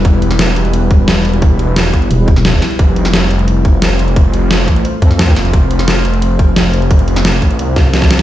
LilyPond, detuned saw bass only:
\new Staff \with { instrumentName = "Detuned saw bass" } { \clef bass \time 4/4 \key f \lydian \tempo 4 = 175 e,,4. e,,2~ e,,8~ | e,,4. g,,8 r2 | f,,4. f,,2~ f,,8~ | f,,4. a,,8 r4. f,,8 |
f,,4. f,,2~ f,,8~ | f,,4. a,,8 c,4 c,4 | }